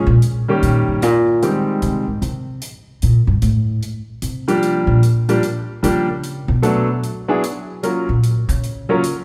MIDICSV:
0, 0, Header, 1, 4, 480
1, 0, Start_track
1, 0, Tempo, 400534
1, 1697, Time_signature, 4, 2, 24, 8
1, 11079, End_track
2, 0, Start_track
2, 0, Title_t, "Grand piano"
2, 0, Program_c, 0, 0
2, 581, Note_on_c, 0, 51, 57
2, 581, Note_on_c, 0, 55, 49
2, 585, Note_on_c, 0, 58, 55
2, 586, Note_on_c, 0, 61, 50
2, 592, Note_on_c, 0, 67, 66
2, 1190, Note_off_c, 0, 51, 0
2, 1190, Note_off_c, 0, 55, 0
2, 1192, Note_off_c, 0, 58, 0
2, 1193, Note_off_c, 0, 61, 0
2, 1196, Note_off_c, 0, 67, 0
2, 1707, Note_on_c, 0, 51, 49
2, 1708, Note_on_c, 0, 55, 42
2, 1711, Note_on_c, 0, 60, 42
2, 1713, Note_on_c, 0, 56, 40
2, 1713, Note_on_c, 0, 67, 47
2, 2429, Note_off_c, 0, 51, 0
2, 2430, Note_off_c, 0, 55, 0
2, 2432, Note_off_c, 0, 56, 0
2, 2432, Note_off_c, 0, 60, 0
2, 2433, Note_off_c, 0, 67, 0
2, 5365, Note_on_c, 0, 55, 54
2, 5367, Note_on_c, 0, 53, 59
2, 5369, Note_on_c, 0, 62, 51
2, 5370, Note_on_c, 0, 58, 51
2, 5375, Note_on_c, 0, 67, 63
2, 5982, Note_off_c, 0, 55, 0
2, 5983, Note_off_c, 0, 53, 0
2, 5984, Note_off_c, 0, 62, 0
2, 5985, Note_off_c, 0, 58, 0
2, 5987, Note_off_c, 0, 67, 0
2, 6334, Note_on_c, 0, 53, 57
2, 6337, Note_on_c, 0, 55, 47
2, 6341, Note_on_c, 0, 62, 55
2, 6342, Note_on_c, 0, 58, 53
2, 6342, Note_on_c, 0, 67, 61
2, 6484, Note_off_c, 0, 53, 0
2, 6485, Note_off_c, 0, 55, 0
2, 6487, Note_off_c, 0, 62, 0
2, 6488, Note_off_c, 0, 58, 0
2, 6488, Note_off_c, 0, 67, 0
2, 6982, Note_on_c, 0, 55, 53
2, 6983, Note_on_c, 0, 53, 56
2, 6990, Note_on_c, 0, 58, 54
2, 6992, Note_on_c, 0, 62, 51
2, 6995, Note_on_c, 0, 67, 62
2, 7258, Note_off_c, 0, 55, 0
2, 7259, Note_off_c, 0, 53, 0
2, 7262, Note_off_c, 0, 58, 0
2, 7263, Note_off_c, 0, 62, 0
2, 7264, Note_off_c, 0, 67, 0
2, 7938, Note_on_c, 0, 54, 61
2, 7942, Note_on_c, 0, 57, 54
2, 7942, Note_on_c, 0, 59, 52
2, 7947, Note_on_c, 0, 62, 50
2, 7948, Note_on_c, 0, 69, 65
2, 8216, Note_off_c, 0, 54, 0
2, 8218, Note_off_c, 0, 57, 0
2, 8218, Note_off_c, 0, 59, 0
2, 8221, Note_off_c, 0, 62, 0
2, 8221, Note_off_c, 0, 69, 0
2, 8728, Note_on_c, 0, 54, 61
2, 8730, Note_on_c, 0, 59, 51
2, 8732, Note_on_c, 0, 62, 58
2, 8737, Note_on_c, 0, 64, 53
2, 8743, Note_on_c, 0, 68, 69
2, 8881, Note_off_c, 0, 54, 0
2, 8882, Note_off_c, 0, 59, 0
2, 8883, Note_off_c, 0, 62, 0
2, 8885, Note_off_c, 0, 64, 0
2, 8888, Note_off_c, 0, 68, 0
2, 9383, Note_on_c, 0, 58, 41
2, 9384, Note_on_c, 0, 54, 49
2, 9389, Note_on_c, 0, 61, 38
2, 9389, Note_on_c, 0, 65, 40
2, 9394, Note_on_c, 0, 70, 47
2, 9658, Note_off_c, 0, 58, 0
2, 9659, Note_off_c, 0, 54, 0
2, 9662, Note_off_c, 0, 61, 0
2, 9662, Note_off_c, 0, 65, 0
2, 9664, Note_off_c, 0, 70, 0
2, 10654, Note_on_c, 0, 54, 60
2, 10656, Note_on_c, 0, 58, 53
2, 10661, Note_on_c, 0, 61, 55
2, 10665, Note_on_c, 0, 65, 53
2, 10665, Note_on_c, 0, 70, 60
2, 10804, Note_off_c, 0, 54, 0
2, 10805, Note_off_c, 0, 58, 0
2, 10807, Note_off_c, 0, 61, 0
2, 10809, Note_off_c, 0, 65, 0
2, 10809, Note_off_c, 0, 70, 0
2, 11079, End_track
3, 0, Start_track
3, 0, Title_t, "Upright bass"
3, 0, Program_c, 1, 32
3, 79, Note_on_c, 1, 46, 94
3, 183, Note_off_c, 1, 46, 0
3, 750, Note_on_c, 1, 46, 68
3, 1044, Note_off_c, 1, 46, 0
3, 1054, Note_on_c, 1, 43, 44
3, 1230, Note_off_c, 1, 43, 0
3, 1230, Note_on_c, 1, 46, 71
3, 1704, Note_off_c, 1, 46, 0
3, 2185, Note_on_c, 1, 48, 88
3, 2479, Note_off_c, 1, 48, 0
3, 2486, Note_on_c, 1, 44, 40
3, 2652, Note_off_c, 1, 44, 0
3, 2658, Note_on_c, 1, 48, 84
3, 3104, Note_off_c, 1, 48, 0
3, 3631, Note_on_c, 1, 46, 80
3, 3915, Note_off_c, 1, 46, 0
3, 3922, Note_on_c, 1, 43, 79
3, 4090, Note_off_c, 1, 43, 0
3, 4100, Note_on_c, 1, 45, 78
3, 4545, Note_off_c, 1, 45, 0
3, 5059, Note_on_c, 1, 48, 66
3, 5800, Note_off_c, 1, 48, 0
3, 5836, Note_on_c, 1, 46, 82
3, 6446, Note_off_c, 1, 46, 0
3, 6989, Note_on_c, 1, 49, 79
3, 7725, Note_off_c, 1, 49, 0
3, 7769, Note_on_c, 1, 47, 90
3, 8373, Note_off_c, 1, 47, 0
3, 9694, Note_on_c, 1, 46, 79
3, 10137, Note_off_c, 1, 46, 0
3, 10170, Note_on_c, 1, 49, 98
3, 10774, Note_off_c, 1, 49, 0
3, 11079, End_track
4, 0, Start_track
4, 0, Title_t, "Drums"
4, 263, Note_on_c, 9, 42, 43
4, 383, Note_off_c, 9, 42, 0
4, 749, Note_on_c, 9, 42, 38
4, 868, Note_off_c, 9, 42, 0
4, 1223, Note_on_c, 9, 42, 44
4, 1343, Note_off_c, 9, 42, 0
4, 1705, Note_on_c, 9, 42, 42
4, 1825, Note_off_c, 9, 42, 0
4, 2180, Note_on_c, 9, 42, 43
4, 2299, Note_off_c, 9, 42, 0
4, 2659, Note_on_c, 9, 42, 41
4, 2779, Note_off_c, 9, 42, 0
4, 3133, Note_on_c, 9, 42, 48
4, 3253, Note_off_c, 9, 42, 0
4, 3617, Note_on_c, 9, 42, 39
4, 3737, Note_off_c, 9, 42, 0
4, 4094, Note_on_c, 9, 42, 43
4, 4214, Note_off_c, 9, 42, 0
4, 4581, Note_on_c, 9, 42, 38
4, 4701, Note_off_c, 9, 42, 0
4, 5056, Note_on_c, 9, 42, 49
4, 5175, Note_off_c, 9, 42, 0
4, 5371, Note_on_c, 9, 42, 36
4, 5490, Note_off_c, 9, 42, 0
4, 5542, Note_on_c, 9, 42, 37
4, 5661, Note_off_c, 9, 42, 0
4, 6025, Note_on_c, 9, 42, 41
4, 6145, Note_off_c, 9, 42, 0
4, 6335, Note_on_c, 9, 42, 38
4, 6455, Note_off_c, 9, 42, 0
4, 6505, Note_on_c, 9, 42, 42
4, 6624, Note_off_c, 9, 42, 0
4, 6993, Note_on_c, 9, 42, 51
4, 7112, Note_off_c, 9, 42, 0
4, 7469, Note_on_c, 9, 42, 39
4, 7589, Note_off_c, 9, 42, 0
4, 7945, Note_on_c, 9, 42, 44
4, 8065, Note_off_c, 9, 42, 0
4, 8427, Note_on_c, 9, 42, 36
4, 8547, Note_off_c, 9, 42, 0
4, 8910, Note_on_c, 9, 42, 49
4, 9029, Note_off_c, 9, 42, 0
4, 9386, Note_on_c, 9, 42, 40
4, 9505, Note_off_c, 9, 42, 0
4, 9866, Note_on_c, 9, 42, 43
4, 9986, Note_off_c, 9, 42, 0
4, 10173, Note_on_c, 9, 42, 39
4, 10293, Note_off_c, 9, 42, 0
4, 10346, Note_on_c, 9, 42, 37
4, 10466, Note_off_c, 9, 42, 0
4, 10827, Note_on_c, 9, 42, 54
4, 10947, Note_off_c, 9, 42, 0
4, 11079, End_track
0, 0, End_of_file